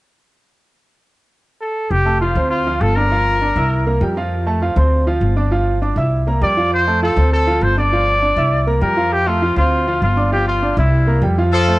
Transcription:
1.61 1.92 A4 medium
1.91 2.33 F1 medium
1.91 2.20 G4 medium
2.05 2.18 A3 medium
2.05 2.18 A4 medium
2.05 2.18 A5 medium
2.21 2.33 F3 medium
2.21 2.49 F4 medium
2.21 2.34 F4 medium
2.21 2.34 F5 medium
2.35 2.78 D2 medium
2.35 2.61 C4 medium
2.35 2.61 C5 medium
2.35 2.61 C6 medium
2.50 2.83 F4 medium
2.67 2.91 F3 medium
2.67 2.91 F4 medium
2.67 2.91 F5 medium
2.81 3.50 G1 medium
2.81 2.97 A4 loud
2.96 3.09 D4 medium
2.96 3.86 A#4 loud
2.96 3.09 D5 medium
2.96 3.09 D6 medium
3.11 3.36 F3 medium
3.11 3.36 F4 medium
3.11 3.36 F5 medium
3.42 3.54 D4 medium
3.42 3.54 D5 medium
3.42 3.54 D6 medium
3.56 3.98 C2 medium
3.56 3.81 E4 medium
3.56 3.81 E5 medium
3.56 3.81 E6 medium
3.86 3.99 A#3 medium
3.86 3.99 A#4 medium
3.86 3.99 A#5 medium
4.01 4.71 F2 medium
4.01 4.14 G3 medium
4.01 4.14 G4 medium
4.01 4.14 G5 medium
4.17 4.41 F3 medium
4.17 4.41 F4 medium
4.17 4.42 F5 medium
4.47 4.59 A3 medium
4.47 4.59 A4 medium
4.47 4.59 A5 medium
4.62 4.74 F3 medium
4.62 4.74 F4 medium
4.62 4.74 F5 medium
4.76 5.18 D2 loud
4.76 5.01 C4 medium
4.76 5.01 C5 medium
4.76 5.02 C6 medium
5.07 5.31 F3 medium
5.07 5.31 F4 medium
5.07 5.32 F5 medium
5.21 5.91 G1 medium
5.36 5.49 D4 medium
5.36 5.49 D5 medium
5.36 5.49 D6 medium
5.51 5.76 F3 medium
5.51 5.76 F4 medium
5.51 5.76 F5 medium
5.82 5.94 D4 medium
5.82 5.94 D5 medium
5.82 5.94 D6 medium
5.96 6.38 C2 medium
5.96 6.22 E4 medium
5.96 6.22 E5 medium
5.96 6.22 E6 medium
6.27 6.39 A#3 medium
6.27 6.39 A#4 medium
6.27 6.40 A#5 medium
6.41 7.11 F2 medium
6.41 6.54 G3 medium
6.41 6.54 G4 medium
6.41 6.70 D5 medium
6.41 6.54 G5 medium
6.57 6.82 F3 medium
6.57 6.82 F4 medium
6.57 6.82 F5 medium
6.74 7.01 C5 loud
6.87 6.99 A3 medium
6.87 7.00 A4 medium
6.87 7.00 A5 medium
7.02 7.14 F3 medium
7.02 7.15 F4 medium
7.02 7.30 A4 medium
7.02 7.15 F5 medium
7.16 7.59 D2 loud
7.16 7.42 C4 medium
7.16 7.42 C5 medium
7.16 7.42 C6 medium
7.33 7.64 A4 loud
7.47 7.71 F3 medium
7.47 7.72 F4 medium
7.47 7.72 F5 medium
7.61 8.31 G1 medium
7.61 7.77 C5 medium
7.77 7.90 D4 medium
7.77 7.90 D5 medium
7.77 8.64 D5 loud
7.77 7.90 D6 medium
7.93 8.17 F3 medium
7.93 8.17 F4 medium
7.93 8.17 F5 medium
8.22 8.35 D4 medium
8.22 8.35 D5 medium
8.22 8.35 D6 medium
8.36 8.79 C2 medium
8.36 8.62 E4 medium
8.36 8.62 E5 medium
8.36 8.62 E6 medium
8.67 8.79 A#3 medium
8.67 8.79 A#4 medium
8.67 8.80 A#5 medium
8.81 9.51 F2 medium
8.81 8.94 G3 medium
8.81 8.94 G4 medium
8.81 9.14 A#4 medium
8.81 8.94 G5 medium
8.97 9.22 F3 medium
8.97 9.22 F4 medium
8.97 9.22 F5 medium
9.12 9.29 G4 loud
9.26 9.39 A3 medium
9.26 9.57 F4 loud
9.26 9.39 A4 medium
9.26 9.40 A5 medium
9.42 9.54 F3 medium
9.42 9.55 F4 medium
9.42 9.55 F5 medium
9.56 9.99 D2 medium
9.56 9.82 C4 medium
9.56 9.99 F4 medium
9.56 9.82 C5 medium
9.56 9.82 C6 medium
9.87 10.12 F3 medium
9.87 10.12 F4 medium
9.87 10.12 F5 medium
10.02 10.72 G1 medium
10.02 10.30 F4 medium
10.17 10.29 D4 medium
10.17 10.29 D5 medium
10.17 10.30 D6 medium
10.32 10.57 F3 medium
10.32 10.57 F4 medium
10.32 10.46 G4 loud
10.32 10.57 F5 medium
10.48 10.75 F4 medium
10.62 10.75 D4 medium
10.62 10.75 D5 medium
10.62 10.75 D6 medium
10.77 11.19 C2 loud
10.77 11.02 E4 medium
10.77 11.20 E4 medium
10.77 11.02 E5 medium
10.77 11.03 E6 medium
11.07 11.20 A#3 medium
11.07 11.20 A#4 medium
11.07 11.20 A#5 medium
11.22 11.79 F2 medium
11.22 11.35 G3 medium
11.22 11.35 G4 medium
11.22 11.35 G5 medium
11.38 11.50 F3 medium
11.38 11.50 F4 medium
11.38 11.50 F5 medium
11.52 11.76 F3 medium
11.52 11.79 F4 medium
11.52 11.79 A4 loud
11.68 11.79 A3 medium
11.68 11.79 A4 medium
11.68 11.79 C5 medium

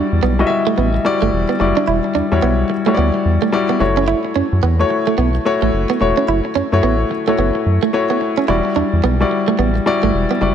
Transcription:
0.00 0.20 G3 medium
0.00 0.20 E4 medium
0.00 0.21 F#4 medium
0.00 0.21 D5 medium
0.12 0.20 E2 medium
0.23 0.44 B1 medium
0.23 0.33 B3 medium
0.39 0.90 G3 medium
0.39 0.90 E4 medium
0.39 0.91 F#4 medium
0.39 0.45 D#5 medium
0.47 0.94 E5 medium
0.47 muted clean electric guitar stroke soft
0.67 0.73 A3 medium
0.78 0.99 A1 loud
0.78 0.88 B3 medium
0.94 muted clean electric guitar stroke soft
1.05 1.49 G3 medium
1.05 1.49 E4 medium
1.05 1.50 F#4 medium
1.05 1.50 D5 loud
1.22 1.30 G1 medium
1.22 1.29 A3 medium
1.33 1.46 E1 loud
1.49 1.56 B3 medium
1.60 1.73 F#1 medium
1.60 2.12 G3 medium
1.60 2.13 E4 medium
1.60 2.13 F#4 medium
1.60 2.13 D5 medium
1.60 muted clean electric guitar stroke soft
1.77 1.84 D4 medium
1.88 2.01 E1 loud
1.88 1.98 E4 medium
2.04 muted clean electric guitar stroke soft
2.15 2.22 E2 soft
2.15 2.25 D4 medium
2.32 2.40 E2 loud
2.32 2.70 G3 medium
2.32 2.71 E4 medium
2.32 2.71 F#4 medium
2.32 2.71 C#5 medium
2.42 2.64 B1 medium
2.42 2.53 B3 medium
2.70 muted clean electric guitar stroke soft
2.86 3.38 G3 medium
2.86 2.93 A3 medium
2.86 3.38 E4 medium
2.86 3.38 F#4 medium
2.86 2.93 C#5 medium
2.94 3.11 D2 medium
2.94 3.08 B3 medium
2.94 3.42 D5 medium
3.14 muted clean electric guitar stroke soft
3.25 3.38 E2 loud
3.42 3.49 A3 medium
3.52 3.80 G3 loud
3.52 3.79 E4 medium
3.52 3.79 F#4 medium
3.52 3.81 D5 loud
3.69 3.76 B3 medium
3.80 4.14 F#1 medium
3.80 4.58 A3 medium
3.80 4.59 E4 medium
3.80 4.59 F#4 medium
3.80 4.59 C#5 medium
3.80 muted clean electric guitar stroke soft
3.97 4.04 C#4 medium
4.08 4.18 E4 medium
4.25 muted clean electric guitar stroke soft
4.36 4.43 F#2 soft
4.36 4.46 C#4 medium
4.52 4.61 F#2 loud
4.63 4.84 E2 medium
4.63 4.73 B3 medium
4.79 5.31 A3 medium
4.79 5.31 E4 medium
4.79 5.31 F#4 medium
4.79 5.31 C#5 loud
4.90 muted clean electric guitar stroke soft
5.07 5.14 A3 medium
5.18 5.39 B1 loud
5.18 5.28 B3 medium
5.35 muted clean electric guitar stroke soft
5.45 5.90 A3 medium
5.45 5.90 E4 medium
5.45 5.90 F#4 medium
5.45 5.90 C#5 loud
5.62 5.71 A1 medium
5.62 5.69 A3 medium
5.73 5.86 F#1 medium
5.90 5.96 B3 medium
6.00 6.14 E1 loud
6.00 6.53 A3 medium
6.00 6.53 E4 medium
6.00 6.53 F#4 medium
6.00 6.54 C#5 medium
6.00 muted clean electric guitar stroke soft
6.17 6.24 C#4 medium
6.28 6.41 F#1 loud
6.28 6.39 E4 medium
6.45 muted clean electric guitar stroke soft
6.55 6.63 F#2 soft
6.55 6.66 C#4 medium
6.72 6.81 F#2 medium
6.72 7.11 A3 medium
6.72 7.11 E4 medium
6.72 7.11 F#4 medium
6.72 7.11 C#5 loud
6.83 7.04 A1 medium
6.83 6.93 B3 medium
7.11 muted clean electric guitar stroke soft
7.27 7.79 A3 medium
7.27 7.34 A3 medium
7.27 7.79 E4 medium
7.27 7.79 F#4 medium
7.27 7.79 C#5 medium
7.38 7.51 F#1 medium
7.38 7.49 B3 medium
7.55 muted clean electric guitar stroke soft
7.66 7.79 F#2 loud
7.83 7.89 A3 medium
7.93 8.38 A3 medium
7.93 8.38 E4 medium
7.93 8.38 F#4 medium
7.93 8.38 C#5 loud
8.10 8.17 B3 medium
8.21 muted clean electric guitar stroke soft
8.37 8.44 C#4 medium
8.48 8.61 E1 loud
8.48 9.01 G3 medium
8.48 8.59 E4 medium
8.48 9.01 E4 medium
8.48 9.01 F#4 medium
8.48 9.01 D5 medium
8.65 muted clean electric guitar stroke soft
8.76 8.83 E2 soft
8.76 8.86 D4 medium
8.93 9.01 E2 medium
9.04 9.25 B1 medium
9.04 9.14 B3 medium
9.20 9.71 G3 medium
9.20 9.71 E4 medium
9.20 9.72 F#4 medium
9.20 9.72 D5 medium
9.31 muted clean electric guitar stroke soft
9.48 9.54 A3 medium
9.59 9.80 A1 loud
9.59 9.69 B3 medium
9.76 muted clean electric guitar stroke soft
9.86 10.30 G3 loud
9.86 10.30 E4 medium
9.86 10.31 F#4 medium
9.86 10.31 D5 loud
10.03 10.11 G1 medium
10.03 10.10 A3 medium
10.14 10.27 E1 medium
10.31 10.37 B3 medium
10.41 10.54 F#1 medium
10.41 10.55 G3 medium
10.41 10.55 E4 medium
10.41 10.55 F#4 medium
10.41 10.55 D5 medium
10.41 muted clean electric guitar stroke soft

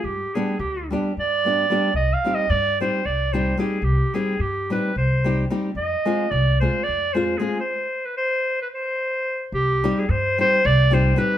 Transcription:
0.04 0.22 G2 medium
0.04 0.36 G4 medium
0.34 0.55 G3 medium
0.34 0.55 B3 medium
0.34 0.55 D4 medium
0.34 0.56 G4 medium
0.34 0.59 G#4 medium
0.59 0.93 D2 loud
0.59 0.88 G4 medium
0.91 1.11 G3 medium
0.91 1.11 B3 medium
0.91 1.12 D4 medium
0.91 1.12 G4 medium
1.17 1.64 G2 medium
1.17 1.92 D5 loud
1.45 1.64 G3 medium
1.45 1.65 B3 medium
1.45 1.65 D4 medium
1.45 1.65 G4 medium
1.70 1.89 G3 medium
1.70 1.90 B3 medium
1.70 1.90 D4 medium
1.70 1.90 G4 medium
1.94 2.12 C2 medium
1.94 2.15 D#5 loud
2.13 2.36 F5 loud
2.25 2.45 G3 medium
2.25 2.45 C4 medium
2.25 2.45 D#4 medium
2.25 2.46 G4 medium
2.35 2.52 D#5 loud
2.50 2.84 G2 loud
2.50 2.80 D5 loud
2.80 3.01 G3 soft
2.80 3.01 C4 medium
2.80 3.01 D#4 medium
2.80 3.01 G4 medium
2.80 3.07 C5 loud
3.05 3.53 C2 medium
3.05 3.34 D5 loud
3.32 3.54 G3 medium
3.32 3.54 C4 medium
3.32 3.54 D#4 medium
3.32 3.54 G4 medium
3.32 3.58 C5 medium
3.58 3.78 G3 medium
3.58 3.79 C4 medium
3.58 3.79 D#4 medium
3.58 3.79 G4 medium
3.58 3.85 G#4 medium
3.82 4.01 C2 medium
3.82 4.16 G4 medium
4.14 4.34 G3 medium
4.14 4.35 C4 medium
4.14 4.35 D#4 medium
4.14 4.35 G4 medium
4.14 4.42 G#4 medium
4.39 4.73 G2 medium
4.39 4.71 G4 loud
4.70 4.90 G3 medium
4.70 4.91 C4 medium
4.70 4.91 D#4 medium
4.70 4.91 G4 medium
4.70 4.95 B4 medium
4.96 5.43 C2 medium
4.96 5.47 C5 medium
5.24 5.44 G3 medium
5.24 5.44 C4 medium
5.24 5.45 D#4 medium
5.24 5.45 G4 medium
5.50 5.69 G3 medium
5.50 5.70 C4 medium
5.50 5.70 D#4 medium
5.50 5.70 G4 medium
5.75 5.93 F2 medium
5.75 6.33 D#5 loud
6.05 6.25 G#3 medium
6.05 6.25 C4 medium
6.05 6.25 F4 medium
6.05 6.26 G#4 medium
6.31 6.65 C2 loud
6.31 6.60 D5 loud
6.60 6.81 G#3 medium
6.60 6.81 C4 medium
6.60 6.81 F4 soft
6.60 6.82 G#4 medium
6.60 6.85 C5 loud
6.83 7.15 D5 loud
6.88 7.35 F2 medium
7.13 7.34 G#3 medium
7.13 7.34 C4 medium
7.13 7.34 F4 medium
7.13 7.35 G#4 medium
7.13 7.39 C5 loud
7.38 7.59 G#3 medium
7.38 7.59 C4 medium
7.38 7.59 F4 medium
7.38 7.60 G#4 medium
7.60 8.07 C5 medium
8.06 8.17 B4 medium
8.17 8.59 C5 loud
8.62 8.68 B4 medium
8.74 9.49 C5 medium
9.52 9.86 C2 medium
9.52 10.00 G4 loud
9.84 10.04 G3 medium
9.84 10.04 C4 medium
9.84 10.04 D#4 medium
9.84 10.04 G4 medium
9.99 10.12 G#4 medium
10.09 10.42 G2 medium
10.09 10.40 C5 loud
10.38 10.59 G3 medium
10.38 10.59 C4 medium
10.38 10.59 D#4 medium
10.38 10.60 G4 medium
10.38 10.67 C5 loud
10.65 11.12 C2 loud
10.65 10.95 D5 loud
10.91 11.11 G3 medium
10.91 11.12 C4 medium
10.91 11.12 D#4 medium
10.91 11.13 G4 medium
10.91 11.20 C5 loud
11.16 11.37 G3 medium
11.16 11.37 C4 medium
11.16 11.37 D#4 medium
11.16 11.37 G4 medium
11.16 11.38 B4 loud

